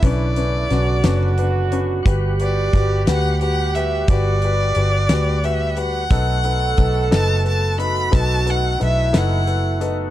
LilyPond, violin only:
\new Staff \with { instrumentName = "Violin" } { \time 6/8 \key b \minor \tempo 4. = 59 d''2~ d''8 r8 | r8 d''4 fis''8 fis''8 e''8 | d''2 e''8 fis''8~ | fis''4. a''8 a''8 b''8 |
a''8 fis''8 e''8 fis''4 r8 | }